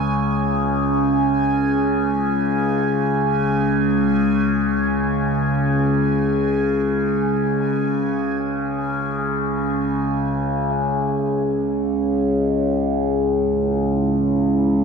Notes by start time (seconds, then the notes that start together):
Already playing: C#2 C#3 G#5
10.75 C#2 C#3 G#3
11.54 C#5
11.96 E4
12.40 C#4